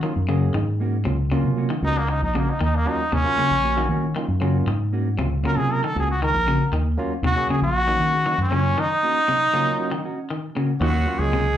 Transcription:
0.03 clean electric guitar D#3, tine electric piano F#3 A#3 C#4 F4
0.16 fingered electric bass F#2
0.28 clean electric guitar C#3 A#3 C#4 F#4, tine electric piano F#3 A#3 C#4 G#4
0.54 fingered electric bass G#2, clean electric guitar D#3
0.80 clean electric guitar A#3 C#4 F#4
1.05 fingered electric bass C#2, clean electric guitar C3, tine electric piano F#3 A#3 C#4 F4
1.32 clean electric guitar C#3 A#3 C#4 F#4, tine electric piano F#3 A#3 C#4 F4
1.44 fingered electric bass C3
1.57 clean electric guitar A#3 C#4 F#4
1.70 clean electric guitar D#3
1.82 fingered electric bass C#2, clean electric guitar A#3 C#4 F#4, trombone D#4
1.98 trombone A#3
2.08 trombone D#4, muted clean electric guitar stroke
2.22 fingered electric bass A#1, trombone D#4
2.34 clean electric guitar C#3 A#3 C#4 F#4, trombone A#3
2.50 trombone D#4
2.61 fingered electric bass D#2, clean electric guitar D#3, trombone D#4
2.76 trombone A#3
2.86 tine electric piano F#3 A#3 C#4 F4, clean electric guitar A#3 C#4 F#4, trombone D#4
3.12 fingered electric bass D#2, clean electric guitar C3, trombone C#4
3.24 tine electric piano F#3 A#3 C#4 F4
3.37 clean electric guitar C#3 A#3 C#4 F#4, muted fingered electric bass stroke
3.51 fingered electric bass A#1
3.63 clean electric guitar A#3 C#4 F#4
3.77 clean electric guitar D#3, tine electric piano F#3 A#3 C#4 F#4
3.89 fingered electric bass D#3, clean electric guitar A#3 C#4 F#4
4.03 tine electric piano C#4 F4
4.16 clean electric guitar D#3, tine electric piano F#3 A#3 C#4 F4
4.28 fingered electric bass F#2
4.40 clean electric guitar C#3 A#3 C#4 F#4, tine electric piano F#3 A#3 C#4 F4
4.67 fingered electric bass G#2, muted clean electric guitar stroke
4.93 clean electric guitar A#3 C#4 F#4
5.17 fingered electric bass C#2, clean electric guitar C3, tine electric piano F#3 A#3 C#4 F4
5.43 clean electric guitar C#3 A#3 C#4 F#4, tine electric piano F#3 A#3 C#4 F4, trombone A#4
5.57 fingered electric bass C3, trombone G#4
5.73 trombone A#4
5.84 clean electric guitar D#3, trombone A4
5.95 fingered electric bass C#2, clean electric guitar A#3 C#4 F#4
6.00 trombone G#4
6.11 trombone F#4
6.22 clean electric guitar D#3, trombone A#4
6.34 fingered electric bass A#1
6.47 clean electric guitar C#3 A#3 C#4 F#4
6.72 fingered electric bass D#2, clean electric guitar D#3
6.98 tine electric piano F#3 A#3 C#4 F4, clean electric guitar A#3 C#4 F#4
7.22 fingered electric bass D#2, clean electric guitar C3, trombone F#4
7.36 tine electric piano F#3 A#3 C#4 G#4
7.49 clean electric guitar C#3 A#3 C#4 F#4, trombone G#4, muted fingered electric bass stroke
7.62 fingered electric bass A#1, trombone F#4
7.87 clean electric guitar D#3, tine electric piano F#3 A#3 C#4 F#4
7.99 fingered electric bass D#3, clean electric guitar A#3 C#4 F#4
8.13 tine electric piano C#4 G#4, clean electric guitar F#4
8.26 clean electric guitar D#3, tine electric piano F#3 A#3 C#4 D#4
8.38 fingered electric bass F#2, trombone C#4
8.50 clean electric guitar C#3 A#3 C#4, tine electric piano F#3 A#3 C#4 F4
8.78 clean electric guitar D#3, trombone D#4
9.03 clean electric guitar A#3 C#4 F#4
9.28 clean electric guitar C3, tine electric piano F#3 A#3 C#4 D#4
9.53 clean electric guitar C#3 A#3 C#4, tine electric piano F#3 A#3 C#4 F4, muted clean electric guitar stroke
9.79 clean electric guitar A#3 C#4 F#4
9.91 clean electric guitar D#3
10.04 clean electric guitar C#4 F#4, muted clean electric guitar stroke
10.18 clean electric guitar C#4
10.30 clean electric guitar D#3
10.55 clean electric guitar C#3 A#3 C#4 F#4
10.80 fingered electric bass D#2, clean electric guitar D#3, tine electric piano F#3 A#3 C#4 F4, tenor saxophone F#3, trumpet F#4
11.06 tine electric piano F#3 A#3 C#4 F4
11.19 fingered electric bass C#2, tenor saxophone G#3, trumpet G#4
11.33 clean electric guitar C3

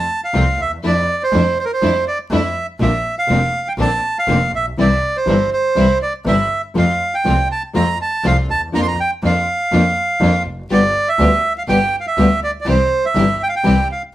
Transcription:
Already playing: bandoneon A5
0.24 bandoneon F5
0.33 double bass C2, nylon-string guitar C3 F3 A3 C4 F4, string section A3 C4 F4
0.59 double bass D#2, bandoneon E5
0.83 double bass F2, nylon-string guitar F3 A3 D4 E4, string section F3 D4 E4, bandoneon D5
1.23 bandoneon C5
1.32 double bass F2, nylon-string guitar F3 A3 D4 E4, string section F3 D4 E4
1.60 bandoneon C5
1.65 bandoneon A#4
1.73 bandoneon C5
1.81 double bass F2, nylon-string guitar F3 A3 D4 E4, string section F3 D4 E4
2.08 bandoneon D5
2.30 double bass F2, nylon-string guitar F3 A3 D4 E4, string section F3 D4 E4, bandoneon E5
2.80 double bass A#1, nylon-string guitar D3 A#3 C4 F4, string section A#3 C4 D4, bandoneon E5
3.19 bandoneon F5
3.28 double bass F1, nylon-string guitar D3 A#3 C4 F4, string section A#3 C4 D4
3.68 bandoneon G5
3.77 double bass A#1, nylon-string guitar D3 A#3 C4 F4, string section A#3 C4 D4, bandoneon A5
4.19 bandoneon F5
4.27 double bass F1, nylon-string guitar D3 A#3 C4 F4, string section A#3 C4 D4
4.52 double bass A#1, bandoneon E5
4.77 double bass C2, nylon-string guitar C3 E3 G3 C4 E4, string section G3 C4 E4, bandoneon D5
5.17 bandoneon C5
5.26 double bass G1, nylon-string guitar C3 E3 G3 C4 E4, string section G3 C4 E4
5.53 bandoneon C5
5.75 double bass C2, nylon-string guitar C3 E3 G3 C4 E4, string section G3 C4 E4
6.02 bandoneon D5
6.25 double bass G1, nylon-string guitar C3 E3 G3 C4 E4, string section G3 C4 E4, bandoneon E5
6.74 double bass F2, nylon-string guitar C3 F3 A3 C4 F4, string section A3 C4 F4
6.78 bandoneon F5
7.14 bandoneon G5
7.24 double bass C2, nylon-string guitar C3 F3 A3 C4 F4, string section A3 C4 F4
7.52 bandoneon A5
7.73 double bass F2, nylon-string guitar C3 F3 A3 C4 F4, string section A3 C4 F4, bandoneon A#5
8.02 bandoneon A5
8.24 double bass C2, nylon-string guitar C3 F3 A3 C4 F4, string section A3 C4 F4, bandoneon F5
8.49 double bass D#2, bandoneon A5
8.72 double bass F2, nylon-string guitar F3 A#3 D4 F4, string section A#3 D4 F4, bandoneon A#5
8.82 bandoneon C6
8.88 bandoneon A#5
9.00 bandoneon G5
9.23 double bass F2, nylon-string guitar F3 A#3 D4 F4, string section A#3 D4 F4, bandoneon F5
9.72 double bass F2, nylon-string guitar F3 A#3 D4 F4, string section A#3 D4 F4
10.20 double bass F2, nylon-string guitar F3 A#3 D4 F4, string section A#3 D4 F4
10.45 double bass F1
10.70 double bass G1, nylon-string guitar G3 B3 F4, string section B3 F4 G4, bandoneon D5
11.09 bandoneon E5
11.19 double bass D2, nylon-string guitar G3 B3 F4, string section B3 F4 G4
11.58 bandoneon F5
11.68 double bass G1, nylon-string guitar G3 B3 F4, string section B3 F4 G4, bandoneon G5
12.00 bandoneon F5
12.07 bandoneon E5
12.17 double bass D2, nylon-string guitar G3 B3 F4, string section B3 F4 G4
12.43 bandoneon D5
12.61 bandoneon D5
12.65 double bass C2, nylon-string guitar C3 E3 G3 C4 E4, string section C4 E4 G4, bandoneon C5
13.06 bandoneon E5
13.15 double bass G1, nylon-string guitar C3 E3 G3 C4 E4, string section C4 E4 G4
13.43 bandoneon G5
13.49 bandoneon F5
13.56 bandoneon G5
13.63 double bass C2, nylon-string guitar C3 E3 G3 C4 E4, string section C4 E4 G4
13.92 bandoneon F5

